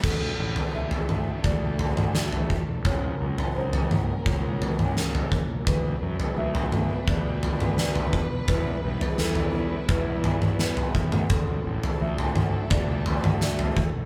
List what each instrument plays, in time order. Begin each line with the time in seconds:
0.04 fingered electric bass D2, clean electric guitar D3, string section E3 D4 A4, felt piano A4, kick, floor tom, crash
0.39 fingered electric bass A1, clean electric guitar E3
0.56 floor tom
0.74 fingered electric bass D2, clean electric guitar E3, felt piano E5
0.91 floor tom
1.09 clean electric guitar A3, mid tom
1.44 fingered electric bass D2, clean electric guitar D4, felt piano D5, kick, floor tom
1.79 clean electric guitar A3, floor tom
1.97 mid tom
2.14 clean electric guitar D3, felt piano D5, snare
2.32 floor tom
2.50 clean electric guitar A3, kick
2.85 fingered electric bass C#2, clean electric guitar C#3, string section F#3 C#4 A#4, felt piano C#5, kick, floor tom
3.20 fingered electric bass C#2, clean electric guitar F#3
3.38 floor tom
3.56 fingered electric bass C#2, clean electric guitar F#3, felt piano C5
3.73 floor tom
3.91 clean electric guitar A#3, mid tom
4.26 fingered electric bass C#2, clean electric guitar C#4, felt piano A#4, kick, floor tom
4.62 clean electric guitar A#3, floor tom
4.79 mid tom
4.96 clean electric guitar C#3, felt piano A#4, snare
5.15 floor tom
5.32 clean electric guitar A#3, kick
5.66 fingered electric bass D2, clean electric guitar D3, string section D4 B4, felt piano B4, kick, floor tom
6.02 fingered electric bass F#2, clean electric guitar F#3
6.20 floor tom
6.37 fingered electric bass D2, clean electric guitar F#3, felt piano E5
6.55 floor tom
6.72 clean electric guitar B3, mid tom
7.08 fingered electric bass D2, clean electric guitar D4, felt piano D5, kick, floor tom
7.43 clean electric guitar B3, floor tom
7.60 mid tom
7.78 clean electric guitar D3, felt piano D5, snare
7.95 floor tom
8.13 clean electric guitar B3, kick
8.47 fingered electric bass E2, clean electric guitar E3, string section G3 E4, felt piano B4, kick, floor tom
8.84 fingered electric bass B1, clean electric guitar G3
9.01 floor tom
9.18 fingered electric bass E2, clean electric guitar G3, felt piano A4, snare
9.35 floor tom
9.55 clean electric guitar B3
9.89 fingered electric bass E2, clean electric guitar E4, felt piano B4, kick, floor tom
10.24 clean electric guitar B3, floor tom, mid tom
10.42 mid tom
10.59 clean electric guitar E3, felt piano B4, snare
10.77 floor tom
10.95 fingered electric bass B1, clean electric guitar B3, kick
11.12 fingered electric bass D2, mid tom
11.30 fingered electric bass D2, clean electric guitar D3, string section E3 D4 A4, felt piano A4, kick, floor tom
11.65 fingered electric bass A1, clean electric guitar E3
11.83 floor tom
12.01 fingered electric bass D2, clean electric guitar E3, felt piano E5
12.18 floor tom
12.36 clean electric guitar A3, mid tom
12.70 fingered electric bass D2, clean electric guitar D4, felt piano D5, kick, floor tom
13.06 clean electric guitar A3, floor tom
13.24 mid tom
13.41 clean electric guitar D3, felt piano D5, snare
13.59 floor tom
13.77 clean electric guitar A3, kick